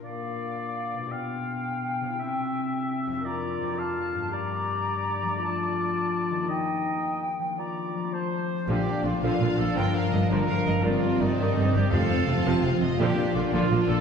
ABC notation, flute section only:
X:1
M:6/8
L:1/8
Q:3/8=111
K:Bb
V:1 name="Flute section"
f6 | g6- | g6 | b3 a3 |
b6 | a6 | g6 | b3 a2 z |
f f f f f f | f f f f f f | d d d d d d | f f f f f f |
f f f f f f |]